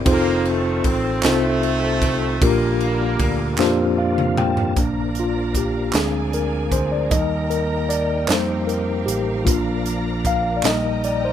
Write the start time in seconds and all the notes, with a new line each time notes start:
0.05 F1 D#3 C4 D#4 F4 G#4 A4 C5, kick, ride
0.11 A#3 A4
0.45 A3, ride
0.84 A1 C4, kick, ride
1.23 C2 C3 D#3 A3 C4 D#4 F4 A4 C5, snare, clap, ride
1.63 ride
2.02 kick, ride
2.41 A#1 A#2 D3 G3 A#3 C#4 D4 F4 G4 A#4, kick, ride
2.48 D4
2.81 ride
3.19 D2, kick, ride
3.58 F2 A#3 D4 F4 G4 C5, snare, clap
3.98 D5 F5
4.16 F5, mid tom
4.37 G5 A5, mid tom
4.57 floor tom
4.76 A#1 F3 A#3 D4 A#4 D5 F5 A#5, kick, closed hi-hat
5.15 closed hi-hat
5.20 F4
5.55 G4, kick, closed hi-hat
5.91 D2 F3 G#3 A#3 C4 D4 G4 D5 G#5, clap, closed hi-hat
5.95 D4 G#4, snare
6.01 G#4
6.33 A#4, closed hi-hat
6.72 D2 C5, kick, closed hi-hat
6.92 D5
7.10 D#2 G3 A#3 D#4 A4 D#5 G5 A#5, kick, closed hi-hat
7.20 A#4
7.50 A#4, closed hi-hat
7.89 D5, closed hi-hat
8.27 F2 F3 G3 A#3 D#4 G4 C5 F5, snare, clap, closed hi-hat
8.67 A#4, closed hi-hat
9.06 A1 G4, closed hi-hat
9.45 A#1 F3 A#3 D4 F4 A#4 D5 A#5, kick, closed hi-hat
9.86 closed hi-hat
10.25 F5, kick, closed hi-hat
10.57 D5
10.63 A#1 F3 G3 A#3 D#4 A#4 D#5 G5 A#5, snare, clap, closed hi-hat
10.71 G3
11.04 D5, closed hi-hat
11.25 C5